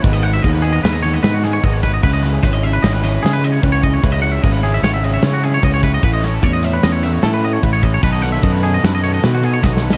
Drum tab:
CC |------------------------------|x-----------------------------|------------------------------|------------------------------|
RD |x--x--x--x--x--x--x--x--x--x--|---x--x--x--x--x--x--x--x--x--|x--x--x--x--x--x--x--x--x--x--|x--x--x--x--x--x--x--x--x--x--|
SD |------------o-----o--o-----o--|---o--o-----o--o--o-----------|------------o-----o--------o--|---o-----o--o--o--o-----------|
BD |o-----o-----------------o--o--|o-----o-----------------o--o--|o-----o-----------------o--o--|o-----o-----------------o--o--|

CC |------------------------------|
RD |x--x--x--x--x--x--x--x--------|
SD |---o--------o-----o-----o-o-o-|
BD |o-----o-----------------o-----|